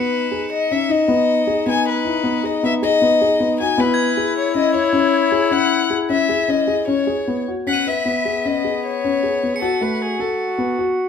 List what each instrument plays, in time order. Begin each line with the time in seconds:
Already playing: grand piano B3, french horn D#4, violin B4
0.32 grand piano G#4
0.52 violin D#5
0.71 grand piano C#4, violin E5
0.89 grand piano D#4, violin D#5
1.08 grand piano B3
1.47 grand piano G#4
1.66 grand piano B3, violin G#5
1.89 violin B4
2.04 grand piano E4
2.23 grand piano B3
2.44 grand piano G#4, violin D#5
2.63 grand piano B3, violin E5
2.82 grand piano G#4, violin D#5
3.02 grand piano B3
3.21 grand piano G#4
3.40 grand piano B3
3.60 grand piano F#4, violin G#5
3.78 grand piano B3, french horn E4, violin B4
3.94 crotales G#6
4.17 grand piano G#4
4.38 violin C#5
4.55 grand piano C#4, violin D#5
4.73 grand piano E4, violin C#5
4.93 grand piano C#4
5.32 grand piano G#4
5.51 grand piano C#4, violin F#5
5.90 grand piano G#4
6.09 grand piano C#4, violin E5
6.29 grand piano G#4
6.48 grand piano C#4, violin D#5
6.68 grand piano G#4
6.88 grand piano C#4, violin C#5
7.07 grand piano G#4
7.27 grand piano B3
7.48 grand piano F#4
7.67 french horn B3, grand piano C#4, violin F#5, crotales B6
7.73 crotales D#7
7.86 grand piano B4, violin E5
8.05 grand piano B3
8.25 grand piano G#4
8.45 grand piano C#4, violin D#5
8.64 grand piano G#4
8.85 violin C#5
9.04 grand piano C#4
9.23 grand piano G#4
9.43 grand piano B3
9.55 french horn G#4, crotales C#7
9.62 grand piano F#4, french horn F#4, violin A4
9.81 grand piano A3, violin B4
10.02 violin G#4
10.20 grand piano A4, violin A4
10.58 grand piano B3
10.78 grand piano F#4